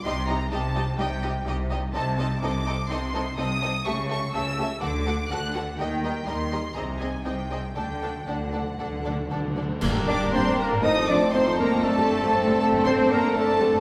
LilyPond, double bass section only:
\new Staff \with { instrumentName = "Double bass section" } { \clef bass \time 4/4 \key c \dorian \tempo 4 = 123 c,4 c,4 c,4 c,4 | \key d \phrygian c,4 c,4 c,4 c,4 | cis,4 cis,4 d,4 d,4 | ees,4 ees,4 c,4 c,4 |
d,4 d,4 d,4 d,4 | g,16 g,16 g,16 g,16 g,16 g,16 r16 g,16 f,16 f,16 f,16 r16 f,16 f,16 f,16 f,16 | fis,,16 fis,,16 fis,,16 fis,,16 fis,,16 fis,,16 r16 fis,,16 fis,,16 fis,,16 fis,,16 r16 fis,,16 fis,,16 fis,,16 fis,,16 | }